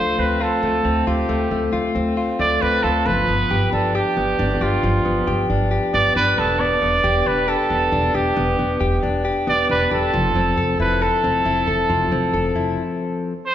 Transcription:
Already playing: upright bass D2, clean electric guitar F3 A3 D4 F4, trumpet C5
0.18 upright bass D2, clean electric guitar C4, trumpet B4
0.40 clean electric guitar F4, trumpet A4
0.63 upright bass D2, clean electric guitar A3
0.85 upright bass D2, clean electric guitar C4
1.07 upright bass D2, clean electric guitar F4, trumpet G4
1.29 upright bass D2, clean electric guitar A3
1.51 upright bass D2, clean electric guitar A3
1.73 upright bass D2, clean electric guitar F4
1.95 upright bass D2, clean electric guitar C4
2.17 clean electric guitar F4
2.39 upright bass D2, clean electric guitar A3, trumpet D5
2.61 upright bass D2, clean electric guitar C4, trumpet B4
2.83 upright bass D2, clean electric guitar F4, trumpet A4
3.06 upright bass G1, clean electric guitar F3, trumpet B4
3.28 upright bass G1, clean electric guitar B3
3.50 upright bass G1, clean electric guitar G4
3.72 upright bass G1, clean electric guitar D4, trumpet A4
3.95 clean electric guitar G4, trumpet G4
4.17 upright bass G1, clean electric guitar B3
4.39 upright bass G1, clean electric guitar D4
4.61 upright bass G1, trumpet F4, clean electric guitar G4
4.83 upright bass G1, clean electric guitar F3
5.05 upright bass G1, clean electric guitar B3
5.27 upright bass G1, clean electric guitar G4
5.50 upright bass G1, clean electric guitar D4
5.71 clean electric guitar G4
5.94 upright bass G1, clean electric guitar B3, trumpet D5
6.15 upright bass G1, clean electric guitar D4, trumpet B4
6.37 upright bass E1, clean electric guitar B3, trumpet A4
6.60 clean electric guitar B3, trumpet D5
6.82 upright bass E1, clean electric guitar B3
7.04 upright bass E1, clean electric guitar G4
7.26 upright bass E1, clean electric guitar D4, trumpet B4
7.48 clean electric guitar G4, trumpet A4
7.70 upright bass E1, clean electric guitar B3
7.92 upright bass E1, clean electric guitar D4
8.14 upright bass E1, clean electric guitar G4, trumpet G4
8.37 upright bass E1, clean electric guitar B3
8.59 upright bass E1, clean electric guitar B3
8.81 upright bass E1, clean electric guitar G4
9.03 upright bass E1, clean electric guitar D4
9.25 clean electric guitar G4
9.47 upright bass E1, clean electric guitar B3, trumpet D5
9.69 upright bass E1, clean electric guitar D4, trumpet B4
9.91 upright bass E1, clean electric guitar G4, trumpet A4
10.13 upright bass F1, clean electric guitar F3
10.35 upright bass F1, clean electric guitar C4
10.57 upright bass F1, clean electric guitar A4
10.80 upright bass F1, clean electric guitar E4, trumpet B4
11.01 clean electric guitar A4, trumpet A4
11.24 upright bass F1, clean electric guitar C4
11.45 upright bass F1, clean electric guitar E4
11.68 upright bass F1, clean electric guitar A4
11.90 upright bass F1, clean electric guitar F3
12.12 upright bass F1, clean electric guitar C4
12.34 upright bass F1, clean electric guitar A4
12.56 upright bass F1, clean electric guitar E4
13.45 trumpet C5

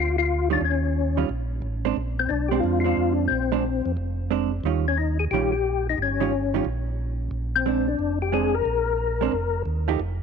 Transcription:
Already playing: tonewheel organ D2 F4
0.18 tonewheel organ F4
0.50 hollow-body jazz guitar D#3 G3 C#4 F4, tonewheel organ D4
0.61 tonewheel organ D#2 C#4
1.17 hollow-body jazz guitar D#3 G3 C#4 F4
1.29 tonewheel organ A#1
1.62 tonewheel organ A1
1.85 hollow-body jazz guitar G#3 C4 D4
1.97 tonewheel organ A#1
2.19 tonewheel organ C4
2.29 tonewheel organ B1 D4
2.48 hollow-body jazz guitar G#3 C4, tonewheel organ G4
2.53 hollow-body jazz guitar D4
2.60 tonewheel organ F2 F4
2.80 tonewheel organ F4
2.84 hollow-body jazz guitar G#3 C4 D4
2.97 tonewheel organ F2
3.12 tonewheel organ D4
3.28 tonewheel organ A#1 C4
3.52 hollow-body jazz guitar G#3 C4 D4
3.86 tonewheel organ F2
3.97 tonewheel organ F1
4.31 hollow-body jazz guitar G#3 C4 D4
4.64 tonewheel organ D#2, hollow-body jazz guitar D#3 G3 C#4 F4
4.88 tonewheel organ C#4
4.98 tonewheel organ D#4
5.19 tonewheel organ G#4
5.31 tonewheel organ A#1 G4, hollow-body jazz guitar D#3 G3 C#4 F4
5.52 tonewheel organ G4
5.89 tonewheel organ D#4
5.98 tonewheel organ G1
6.02 tonewheel organ C#4
6.20 hollow-body jazz guitar D#3 G3 C#4 F4
6.54 hollow-body jazz guitar D#3 G3 C#4 F4
6.65 tonewheel organ A#1
7.31 tonewheel organ A#1
7.56 tonewheel organ C4
7.66 hollow-body jazz guitar G#3 C4 D4
7.88 tonewheel organ D4
7.99 tonewheel organ F1
8.22 tonewheel organ G4
8.32 hollow-body jazz guitar G#3 C4 D4, tonewheel organ G#4
8.54 tonewheel organ A#4
8.65 tonewheel organ A#1
9.21 hollow-body jazz guitar G#3 C4 D4
9.32 tonewheel organ F1
9.66 tonewheel organ D#2
9.88 hollow-body jazz guitar F3 A3 D#4 G4
10.00 tonewheel organ F1

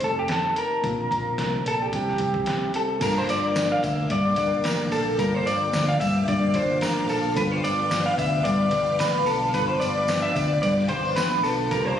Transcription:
Already playing: steel-string acoustic guitar F2 C3 D#3 D#4, reed electric piano A3 C4 D#4 G4
0.00 fingered electric bass F1, steel-string acoustic guitar A3, clean electric guitar A4, closed hi-hat
0.19 clean electric guitar G4
0.28 steel-string acoustic guitar D#4, clean electric guitar A4, snare, closed hi-hat
0.56 clean electric guitar A#4, closed hi-hat
0.81 fingered electric bass A#1, steel-string acoustic guitar A#2, reed electric piano A#3 C4 D4, kick, closed hi-hat
0.86 reed electric piano F4
1.11 fingered electric bass A#1, steel-string acoustic guitar F3, kick, closed hi-hat
1.38 fingered electric bass C2, steel-string acoustic guitar A3, snare, closed hi-hat
1.65 fingered electric bass A#1, steel-string acoustic guitar D4, clean electric guitar A4, closed hi-hat
1.82 clean electric guitar G4
1.90 fingered electric bass C2, steel-string acoustic guitar C3, reed electric piano G3 C4 E4, kick, closed hi-hat
1.95 reed electric piano G4
2.08 snare
2.18 fingered electric bass C2, steel-string acoustic guitar C4, kick, closed hi-hat
2.34 kick
2.46 steel-string acoustic guitar E4, snare, closed hi-hat
2.74 steel-string acoustic guitar C4, clean electric guitar A4, closed hi-hat
2.99 fingered electric bass G1, steel-string acoustic guitar G2, reed electric piano A#3 D4 F4, string machine A#3 F5 G5 D6, clean electric guitar A#4, kick, closed hi-hat, crash, tambourine
3.04 reed electric piano A4
3.18 clean electric guitar C5
3.28 fingered electric bass G1, steel-string acoustic guitar F3, clean electric guitar D5, closed hi-hat, tambourine
3.55 steel-string acoustic guitar D4, snare, closed hi-hat, tambourine
3.72 clean electric guitar F5
3.82 fingered electric bass D2, steel-string acoustic guitar A#3, clean electric guitar E5, kick, closed hi-hat, tambourine
4.09 fingered electric bass G2, steel-string acoustic guitar D3, clean electric guitar D5, kick, closed hi-hat
4.36 fingered electric bass G1, steel-string acoustic guitar D4, kick, closed hi-hat, tambourine
4.64 fingered electric bass A1, steel-string acoustic guitar A#3, clean electric guitar A#4, snare, closed hi-hat, tambourine
4.91 fingered electric bass A#1, steel-string acoustic guitar F3, clean electric guitar A4, open hi-hat, tambourine
5.16 fingered electric bass G1, steel-string acoustic guitar G2, reed electric piano A#3 D4 F4, clean electric guitar A#4, kick, closed hi-hat, tambourine
5.21 reed electric piano A4
5.34 clean electric guitar C5
5.45 fingered electric bass G1, steel-string acoustic guitar F3, clean electric guitar D5, closed hi-hat, tambourine
5.73 fingered electric bass D2, steel-string acoustic guitar D4, snare, closed hi-hat, tambourine
5.89 clean electric guitar F5
6.00 fingered electric bass G2, steel-string acoustic guitar A#3, clean electric guitar E5, kick, closed hi-hat, tambourine
6.27 fingered electric bass G2, steel-string acoustic guitar D3, clean electric guitar D5, kick, closed hi-hat, tambourine
6.54 fingered electric bass G1, reed electric piano A#3 D4 F4 A4, steel-string acoustic guitar D4, clean electric guitar C5, kick, closed hi-hat, tambourine
6.81 fingered electric bass A1, steel-string acoustic guitar A#3, clean electric guitar A#4, snare, closed hi-hat, tambourine
7.09 fingered electric bass A#1, steel-string acoustic guitar F3, clean electric guitar A4, open hi-hat, tambourine
7.34 fingered electric bass G1, steel-string acoustic guitar G2, reed electric piano B3 D4 F4, string machine B4 D6, clean electric guitar B4, kick, closed hi-hat, tambourine
7.39 reed electric piano A4
7.52 clean electric guitar C5
7.63 fingered electric bass G1, steel-string acoustic guitar F3, clean electric guitar D5, closed hi-hat, tambourine
7.90 steel-string acoustic guitar D4, snare, closed hi-hat, tambourine
8.06 clean electric guitar F5
8.17 fingered electric bass D2, steel-string acoustic guitar B3, clean electric guitar E5, kick, closed hi-hat, tambourine
8.44 fingered electric bass G2, steel-string acoustic guitar D3, clean electric guitar D5, kick, closed hi-hat, tambourine
8.71 fingered electric bass G1, steel-string acoustic guitar D4, kick, closed hi-hat, tambourine
8.99 fingered electric bass A1, steel-string acoustic guitar B3, clean electric guitar B4, snare, closed hi-hat, tambourine
9.26 fingered electric bass B1, steel-string acoustic guitar F3, clean electric guitar A4, open hi-hat, tambourine
9.51 fingered electric bass G1, steel-string acoustic guitar G2, reed electric piano B3 D4 F4, clean electric guitar B4, kick, closed hi-hat, tambourine
9.56 reed electric piano A4
9.68 clean electric guitar C5
9.80 fingered electric bass G1, steel-string acoustic guitar F3, clean electric guitar D5, closed hi-hat, tambourine
10.08 steel-string acoustic guitar D4, snare, closed hi-hat, tambourine
10.22 clean electric guitar E5
10.34 fingered electric bass D2, steel-string acoustic guitar B3, clean electric guitar D5, kick, closed hi-hat, tambourine
10.62 fingered electric bass G2, steel-string acoustic guitar D3, clean electric guitar D5, kick, closed hi-hat, tambourine
10.78 snare
10.89 fingered electric bass G1, steel-string acoustic guitar C4, clean electric guitar C5, kick, closed hi-hat, tambourine
11.05 steel-string acoustic guitar D4
11.16 fingered electric bass A1, reed electric piano B3 D4 F4 A4, steel-string acoustic guitar B3, clean electric guitar B4, snare, closed hi-hat, tambourine
11.43 fingered electric bass B1, steel-string acoustic guitar F3, clean electric guitar A4, open hi-hat, tambourine
11.69 fingered electric bass C2, steel-string acoustic guitar C3, reed electric piano A#3 D4 F4, clean electric guitar A#4, string machine C5 F5 A#5, kick, closed hi-hat, tambourine
11.74 reed electric piano G4
11.85 clean electric guitar C5

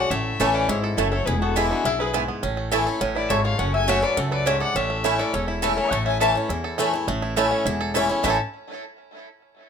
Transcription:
Already playing: steel-string acoustic guitar F#4, five-string banjo F#4 A4, resonator guitar played with a steel bar D5, fiddle F#5
0.00 steel-string acoustic guitar C#4
0.10 upright bass A1, steel-string acoustic guitar A2, five-string banjo A3, resonator guitar played with a steel bar C#5, fiddle E5
0.40 upright bass A1, steel-string acoustic guitar E3 A3 C#4 E4, mandolin A3 E4 C#5 A5, five-string banjo A4
0.54 five-string banjo C#4, resonator guitar played with a steel bar B4, fiddle D5
0.68 upright bass G#1, steel-string acoustic guitar G#2, five-string banjo E4, resonator guitar played with a steel bar A4, fiddle C#5
0.83 fiddle E4, five-string banjo A4, muted resonator guitar played with a steel bar stroke
0.96 upright bass F#1, steel-string acoustic guitar F#2, mandolin A3 E4 C#5 A5, five-string banjo A3, resonator guitar played with a steel bar E4, fiddle A4
1.12 five-string banjo E4, resonator guitar played with a steel bar A4, fiddle C#5
1.26 upright bass E1, steel-string acoustic guitar E2, five-string banjo E4, resonator guitar played with a steel bar G#4, fiddle B4
1.41 five-string banjo B3, resonator guitar played with a steel bar F#4, fiddle A4
1.55 steel-string acoustic guitar E3 G#3 B3 E4, mandolin B3 E4 B4 G#5, resonator guitar played with a steel bar E4, five-string banjo E4, fiddle G#4
1.70 resonator guitar played with a steel bar D4, five-string banjo E4, fiddle F#4
1.84 upright bass B1, steel-string acoustic guitar F#2, five-string banjo E4, resonator guitar played with a steel bar E4, fiddle G#4
1.99 five-string banjo E4, resonator guitar played with a steel bar G#4, fiddle B4
2.13 steel-string acoustic guitar G#2, mandolin B3 E4 B4 G#5, five-string banjo E4
2.28 five-string banjo B3
2.43 upright bass A1, steel-string acoustic guitar A2, five-string banjo C#4
2.57 five-string banjo A3
2.71 steel-string acoustic guitar E3 A3 C#4 E4, mandolin A3 E4 C#5 A5, five-string banjo E4
2.86 steel-string acoustic guitar C#4 E4, five-string banjo A4
3.01 upright bass A1, steel-string acoustic guitar A2, five-string banjo C#4
3.15 five-string banjo E4, resonator guitar played with a steel bar B4, fiddle D5
3.29 upright bass G#1, steel-string acoustic guitar G#2, mandolin A3 E4 C#5 A5, five-string banjo A4, resonator guitar played with a steel bar C#5, fiddle E5
3.44 five-string banjo A3, resonator guitar played with a steel bar C#5, fiddle F5
3.59 upright bass F#1, steel-string acoustic guitar F#2, five-string banjo C#4, resonator guitar played with a steel bar C#5, fiddle F#5
3.74 five-string banjo F#4, resonator guitar played with a steel bar E5, fiddle G#5
3.87 steel-string acoustic guitar F#3 A3 C#4 F#4, mandolin A3 F#4 C#5 F#5, five-string banjo A3, resonator guitar played with a steel bar C#5, fiddle E5
4.02 steel-string acoustic guitar C#4 F#4, five-string banjo A4, resonator guitar played with a steel bar B4, fiddle D5
4.17 upright bass C#2, steel-string acoustic guitar F#2, five-string banjo A3, resonator guitar played with a steel bar A4, fiddle C#5
4.31 five-string banjo A4, resonator guitar played with a steel bar B4, fiddle D5
4.46 steel-string acoustic guitar G#2, mandolin A3 F#4 C#5 F#5, five-string banjo C#4, resonator guitar played with a steel bar C#5, fiddle E5
4.60 five-string banjo A4, resonator guitar played with a steel bar D5, fiddle F#5
4.75 upright bass A1, steel-string acoustic guitar A2, five-string banjo C#4, resonator guitar played with a steel bar C#5, fiddle E5
4.90 five-string banjo A3
5.04 steel-string acoustic guitar E3 A3 C#4 E4, mandolin A3 E4 C#5 A5, five-string banjo E4
5.19 steel-string acoustic guitar C#4 E4, five-string banjo A4, resonator guitar played with a steel bar B4, fiddle D5
5.33 upright bass E1, steel-string acoustic guitar E2, five-string banjo C#4, resonator guitar played with a steel bar A4, fiddle C#5
5.48 five-string banjo E4, fiddle E4, muted resonator guitar played with a steel bar stroke
5.62 steel-string acoustic guitar E3 A3 C#4 E4, mandolin A3 E4 C#5 A5, resonator guitar played with a steel bar E4, five-string banjo A4, fiddle A4
5.77 five-string banjo A3, resonator guitar played with a steel bar A4, fiddle C#5
5.91 upright bass A1, steel-string acoustic guitar A2, five-string banjo A3, resonator guitar played with a steel bar A5, fiddle C#6
6.06 five-string banjo C#4, resonator guitar played with a steel bar E5, fiddle G#5
6.20 steel-string acoustic guitar E3 A3 C#4 E4, mandolin A3 E4 C#5 A5, five-string banjo A4, resonator guitar played with a steel bar E5, fiddle A5
6.35 five-string banjo C#4, steel-string acoustic guitar C#4 E4
6.49 upright bass E2, steel-string acoustic guitar E2, five-string banjo E4
6.64 five-string banjo A4
6.78 steel-string acoustic guitar E3 A3 C#4 E4, five-string banjo A3, mandolin A3 E4 C#5 A5
6.93 steel-string acoustic guitar C#4 E4, five-string banjo E4
7.07 upright bass A1, steel-string acoustic guitar A2, five-string banjo A3
7.22 five-string banjo E4
7.36 steel-string acoustic guitar E3 A3 C#4 E4, mandolin A3 E4 C#5 A5, five-string banjo A3
7.51 five-string banjo C#4
7.65 upright bass E1, steel-string acoustic guitar E2, five-string banjo E4
7.81 five-string banjo A4
7.94 steel-string acoustic guitar E3 A3 C#4 E4, mandolin A3 E4 C#5 A5, five-string banjo E4
8.09 five-string banjo C#4, steel-string acoustic guitar C#4 E4
8.23 upright bass A1, steel-string acoustic guitar A2 E3 A3 C#4 E4, mandolin A3 E4 C#5 A5, five-string banjo A3 C#4, resonator guitar played with a steel bar E4, fiddle A5
8.28 five-string banjo E4 A4

